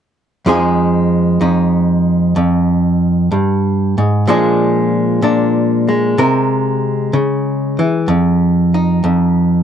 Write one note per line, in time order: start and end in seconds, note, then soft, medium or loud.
0.46 1.39 F2 medium
0.46 4.24 F3 soft
0.46 3.34 G#3 soft
0.46 1.40 D#4 soft
0.46 4.25 G#4 medium
1.41 2.35 F2 soft
1.41 4.24 D#4 soft
2.36 3.31 F2 medium
3.31 3.97 G2 medium
3.98 4.27 G#2 soft
4.27 5.21 A#2 medium
4.27 6.14 F3 soft
4.27 5.87 G#3 medium
4.27 5.22 D4 soft
4.27 6.15 G#4 soft
5.22 6.17 A#2 medium
5.22 6.14 D4 soft
5.89 9.63 G#3 soft
6.18 7.13 C3 medium
6.18 8.05 A#4 medium
7.13 7.78 C#3 medium
7.79 8.08 E3 soft
8.08 9.03 F2 medium
8.74 9.63 D#4 soft
9.04 9.63 F2 medium